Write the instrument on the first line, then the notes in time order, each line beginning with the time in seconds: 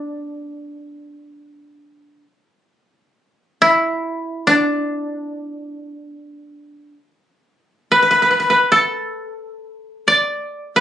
koto
Already playing: D4
3.62 E4
4.47 D4
7.92 B4
8.02 B4
8.11 B4
8.22 B4
8.31 B4
8.40 B4
8.50 B4
8.72 A4
10.08 D5
10.76 B4